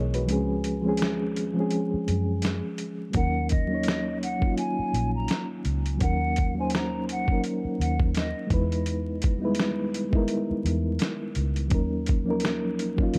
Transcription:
Already playing: fingered electric bass B1, reed electric piano G#3 B3 D#4 E4 G#4 A#4 C#5 D#5
0.14 reed electric piano F#4 B4, closed hi-hat
0.26 fingered electric bass C#2, reed electric piano F3 G#3 C4, closed hi-hat
0.30 reed electric piano C#4 G#4
0.64 closed hi-hat
0.82 reed electric piano F3 G#3 C4
0.87 reed electric piano C#4 G#4
0.97 closed hi-hat
1.02 snare
1.36 closed hi-hat
1.54 reed electric piano F3 G#3 C4
1.59 reed electric piano C#4 G#4
1.71 closed hi-hat
1.94 muted fingered electric bass stroke
2.08 fingered electric bass F#2, closed hi-hat
2.42 snare, closed hi-hat
2.78 closed hi-hat
3.10 reed electric piano F#3 A#3 C#4, closed hi-hat
3.15 fingered electric bass D#2, reed electric piano D#4 A#4, flute F#5, kick
3.49 flute D#5, kick, closed hi-hat
3.67 reed electric piano F#3 A#3 C#4
3.73 reed electric piano D#4 C#5
3.83 closed hi-hat
3.88 snare
4.23 flute F#5, closed hi-hat
4.39 reed electric piano F#3 A#3 C#4, kick
4.44 reed electric piano D#4 F4
4.57 flute G#5, closed hi-hat
4.79 muted fingered electric bass stroke
4.94 fingered electric bass A#1, closed hi-hat
5.16 flute A#5
5.28 snare, closed hi-hat
5.65 fingered electric bass C#2, closed hi-hat
5.86 closed hi-hat
5.97 reed electric piano F#3 A#3 C#4, kick, closed hi-hat
6.01 fingered electric bass D#2, reed electric piano D#4 A#4, flute F#5
6.36 kick, closed hi-hat
6.54 reed electric piano F#3 A#3 C#4
6.59 reed electric piano D#4 C5, flute G#5
6.70 closed hi-hat
6.74 flute A#5, snare
7.09 flute F#5, closed hi-hat
7.26 reed electric piano F#3 A#3 C#4, kick
7.31 reed electric piano D#4 A#4
7.44 closed hi-hat
7.65 muted fingered electric bass stroke
7.80 fingered electric bass D#2, flute F#5, closed hi-hat
8.00 kick
8.15 flute D#5, snare, closed hi-hat
8.47 fingered electric bass E2, reed electric piano G#3 B3 D#4, kick, closed hi-hat
8.52 reed electric piano E4 B4
8.72 closed hi-hat
8.86 closed hi-hat
9.22 kick, closed hi-hat
9.38 reed electric piano G3 B3 D#4
9.43 reed electric piano G#3 E4 B4
9.55 closed hi-hat
9.60 snare
9.94 closed hi-hat
10.10 reed electric piano G#3 B3 D#4, kick
10.15 reed electric piano E4 A#4
10.28 closed hi-hat
10.51 muted fingered electric bass stroke
10.65 fingered electric bass E2, closed hi-hat
10.99 snare, closed hi-hat
11.35 fingered electric bass C#2, closed hi-hat
11.56 closed hi-hat
11.68 fingered electric bass D#2, reed electric piano F#3 A#3 C#4, kick, closed hi-hat
11.73 reed electric piano D#4 A#4
12.06 kick, closed hi-hat
12.24 reed electric piano F3 A#3 C#4
12.29 reed electric piano F#3 D#4 A#4
12.40 closed hi-hat
12.45 snare
12.79 closed hi-hat
12.97 reed electric piano F#3 A#3 C#4, kick
13.01 reed electric piano D#4 F4
13.14 fingered electric bass D#3, closed hi-hat

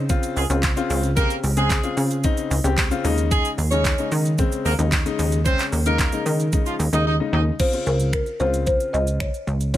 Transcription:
Already playing: analog synth bass C#3
0.09 grand piano C#3 C4 F4, kick, closed hi-hat, shaker
0.23 closed hi-hat, shaker
0.36 analog synth bass C#2, horn section G#3 G#4, open hi-hat, shaker
0.50 analog synth bass C#2, grand piano C#3 C4 F4, closed hi-hat, shaker
0.63 kick, clap, closed hi-hat, shaker
0.76 grand piano C#3 C4 F4, closed hi-hat, shaker
0.90 analog synth bass C#2, open hi-hat, shaker
1.03 closed hi-hat, shaker
1.17 grand piano C#3 C4 G4, horn section A#3 A#4, kick, closed hi-hat, shaker
1.30 closed hi-hat, shaker
1.44 analog synth bass C#2, open hi-hat, shaker
1.57 grand piano C#3 C4 G#4, horn section G#3 G#4, closed hi-hat, shaker
1.70 kick, clap, closed hi-hat, shaker
1.83 grand piano C#3 C4 F4, closed hi-hat, shaker
1.97 analog synth bass C#3, open hi-hat, shaker
2.11 closed hi-hat, shaker
2.24 grand piano C#3 C4 D#4, kick, closed hi-hat, shaker
2.37 closed hi-hat, shaker
2.51 analog synth bass C#2, open hi-hat, shaker
2.64 analog synth bass C#2, grand piano C#3 C4 G4, closed hi-hat, shaker
2.78 kick, clap, closed hi-hat, shaker
2.91 grand piano C#3 C4 F4, closed hi-hat, shaker
3.04 analog synth bass D#2, grand piano C#3 G#3 D#4, open hi-hat, shaker
3.18 closed hi-hat, shaker
3.31 horn section G#3 G#4, kick, closed hi-hat, shaker
3.45 closed hi-hat, shaker
3.58 analog synth bass D#2, open hi-hat, shaker
3.71 grand piano C#3 G#3 D#4, horn section C#4 C#5, closed hi-hat, shaker
3.85 kick, clap, closed hi-hat, shaker
3.98 grand piano C#3 G#3 D#4, closed hi-hat, shaker
4.12 analog synth bass D#3, open hi-hat, shaker
4.25 closed hi-hat, shaker
4.38 grand piano C#3 G#3 C4, kick, closed hi-hat, shaker
4.52 closed hi-hat, shaker
4.65 analog synth bass D#2, horn section A#3 A#4, open hi-hat, shaker
4.78 analog synth bass D#2, grand piano C#3 G#3 D#4, closed hi-hat, shaker
4.92 kick, clap, closed hi-hat, shaker
5.05 grand piano C#3 G#3 D#4, closed hi-hat, shaker
5.19 analog synth bass D#2, open hi-hat, shaker
5.32 closed hi-hat, shaker
5.45 grand piano C#3 G#3 C#4, horn section C4 C5, kick, closed hi-hat, shaker
5.59 clap, closed hi-hat, shaker
5.72 analog synth bass D#2, open hi-hat, shaker
5.86 grand piano C#3 G#3 D#4, horn section A#3 A#4, closed hi-hat, shaker
5.99 kick, clap, closed hi-hat, shaker
6.12 grand piano C#3 G#3 D#4, closed hi-hat, shaker
6.26 analog synth bass D#3, open hi-hat, shaker
6.39 closed hi-hat, shaker
6.52 grand piano C#3 G#3 D#4, kick, closed hi-hat, shaker
6.66 horn section F3 F4, closed hi-hat, shaker
6.79 analog synth bass D#2, open hi-hat, shaker
6.93 analog synth bass D#2, grand piano C#3 G#3 D#4, horn section D#4 D#5, closed hi-hat, shaker
7.06 horn section D#4 D#5
7.20 grand piano C#3 G#3 D#4
7.33 analog synth bass D#2, horn section D#4 D#5
7.60 grand piano C#3 C4 F4, marimba C5, kick, closed hi-hat, crash, shaker
7.73 grand piano C#3 C4 F4, closed hi-hat, shaker
7.86 analog synth bass C#2, marimba A#4, shaker
8.00 closed hi-hat, shaker
8.13 marimba A#4, finger snap, kick, closed hi-hat, shaker
8.26 closed hi-hat, shaker
8.40 analog synth bass C#2, grand piano C#3 C4 F4, marimba C5, shaker
8.54 closed hi-hat, shaker
8.67 marimba C5, kick, closed hi-hat, shaker
8.80 closed hi-hat, shaker
8.93 analog synth bass C#2, marimba D#5, shaker
9.07 closed hi-hat, shaker
9.20 marimba C#5, finger snap, kick, closed hi-hat, shaker
9.34 closed hi-hat, shaker
9.47 analog synth bass C#2, shaker
9.61 closed hi-hat, shaker
9.74 grand piano C#3, marimba C#5, kick, closed hi-hat, shaker

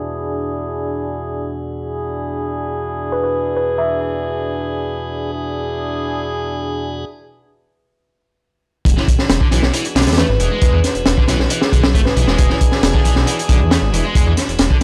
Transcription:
Already playing: tonewheel organ E2 B2 D4 F#4 G#4, brass ensemble D4 E4 G#4
1.80 brass ensemble D4 E4 G#4
3.12 kalimba B4
3.23 kalimba B4
3.56 kalimba B4
3.78 kalimba E5
5.33 brass ensemble D4 E4 G#4
8.85 detuned saw bass E1, tonewheel organ E3 B3 D4 F#4 G#4, kick, closed hi-hat
8.97 overdriven electric guitar E3, snare
9.08 kick, closed hi-hat
9.19 snare
9.30 detuned saw bass E1, snare, closed hi-hat
9.41 overdriven electric guitar D3, kick
9.51 detuned saw bass B1, overdriven electric guitar E3, snare, closed hi-hat
9.63 detuned saw bass B1, snare
9.74 overdriven electric guitar E3, closed hi-hat
9.85 closed hi-hat
9.95 detuned saw bass B1, overdriven electric guitar D3, snare, closed hi-hat
10.01 snare, closed hi-hat
10.07 detuned saw bass E2, snare, closed hi-hat
10.13 snare, closed hi-hat
10.17 overdriven electric guitar A3, kalimba B4, snare, closed hi-hat
10.29 detuned saw bass G#1, kalimba B4
10.40 detuned saw bass E1, overdriven electric guitar E3, brass ensemble D4 E4 G#4, closed hi-hat
10.51 overdriven electric guitar G#3
10.62 detuned saw bass E2, brass ensemble D4 E4 G#4, kalimba B4, kick, closed hi-hat
10.73 detuned saw bass E2, overdriven electric guitar E3
10.84 snare, closed hi-hat
10.95 detuned saw bass E1, closed hi-hat
11.06 detuned saw bass E1, snare, closed hi-hat
11.18 overdriven electric guitar D3, kick
11.28 detuned saw bass B1, overdriven electric guitar E3, snare, closed hi-hat
11.39 detuned saw bass B1, snare
11.50 overdriven electric guitar E3, closed hi-hat
11.61 kalimba G#4, snare
11.72 detuned saw bass B1, overdriven electric guitar D3, kick, closed hi-hat
11.84 snare
11.94 detuned saw bass G#1, overdriven electric guitar A3, kick, closed hi-hat
12.05 brass ensemble D4 E4 G#4, kalimba B4, snare
12.16 detuned saw bass B1, overdriven electric guitar E3, brass ensemble D4 E4 G#4, closed hi-hat
12.28 detuned saw bass E1, overdriven electric guitar G#3, snare
12.38 detuned saw bass E1, kick, closed hi-hat
12.50 overdriven electric guitar E3, snare
12.61 kick, closed hi-hat
12.72 snare
12.83 detuned saw bass E1, snare, closed hi-hat
12.94 overdriven electric guitar D3, kick
13.05 detuned saw bass B1, overdriven electric guitar E3, closed hi-hat
13.16 detuned saw bass B1, snare
13.27 overdriven electric guitar E3, closed hi-hat
13.39 closed hi-hat
13.49 detuned saw bass B1, overdriven electric guitar D3, kick, closed hi-hat
13.60 detuned saw bass E2
13.71 overdriven electric guitar A3, snare, closed hi-hat
13.82 detuned saw bass G#1
13.93 detuned saw bass E1, overdriven electric guitar E3, brass ensemble D4 E4 G#4, closed hi-hat
14.04 overdriven electric guitar G#3
14.15 detuned saw bass E2, brass ensemble D4 E4 G#4, kick, closed hi-hat
14.26 detuned saw bass E2, overdriven electric guitar E3
14.37 snare, closed hi-hat
14.48 detuned saw bass E1, closed hi-hat
14.59 detuned saw bass E1, snare, closed hi-hat
14.70 overdriven electric guitar D3, kick

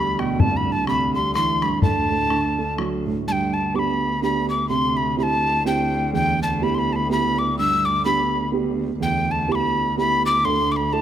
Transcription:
Already playing: cello D2, upright piano E2 G3, tin whistle B5
0.19 upright piano B2, tin whistle G5, bodhran
0.40 upright piano C2, tin whistle A5, bodhran
0.57 tin whistle B5
0.67 upright piano G2
0.72 tin whistle A5
0.87 upright piano C3, tin whistle B5, bodhran
1.14 upright piano G3, tin whistle C6
1.35 upright piano E3, tin whistle C6, bodhran
1.62 upright piano G2, tin whistle B5, bodhran
1.82 upright piano D2, tin whistle A5, bodhran
2.10 upright piano A2
2.30 upright piano D3, bodhran
2.58 upright piano A3
2.78 upright piano F#3, bodhran
3.06 upright piano A2
3.27 cello D2, upright piano G2, tin whistle A5
3.32 tin whistle G5
3.54 tin whistle A5
3.74 upright piano B3 D4 G4, tin whistle D6
3.79 tin whistle B5
4.22 upright piano B3 D4 G4, tin whistle B5
4.50 tin whistle D6
4.69 upright piano C3, tin whistle C6
4.97 tin whistle B5
5.17 upright piano C4 E4 G4, tin whistle B5
5.23 tin whistle A5
5.66 upright piano C4 E4 G4, tin whistle G5
6.13 upright piano E2, tin whistle G5
6.43 tin whistle A5
6.62 upright piano B3 E4 G4, tin whistle B5
6.75 tin whistle C6
6.79 tin whistle B5
6.93 tin whistle A5 B5
7.10 upright piano B3 E4 G4, tin whistle B5
7.39 tin whistle D6
7.59 upright piano G2, tin whistle E6
7.85 tin whistle D6
8.05 upright piano B3 D4 G4, tin whistle B5
8.52 upright piano B3 D4 G4
9.00 cello D2, upright piano E2, tin whistle G5
9.31 tin whistle A5
9.48 upright piano B3 E4 G4, tin whistle D6
9.55 tin whistle B5
9.97 upright piano B3 E4 G4, tin whistle B5
10.26 tin whistle D6
10.45 upright piano D2, tin whistle C6
10.72 tin whistle D6
10.76 tin whistle B5
10.93 upright piano D4 E4 A4, tin whistle A5

